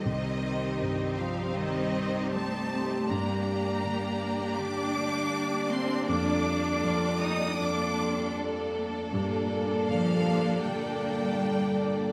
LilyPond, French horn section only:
\new Staff \with { instrumentName = "French horn section" } { \time 4/4 \key g \minor \tempo 4 = 79 << { g'1~ | g'1 | a'1 | a'2 a'2 | } \\ { g1 | g1~ | g1 | bes,2 bes,2 | } >> }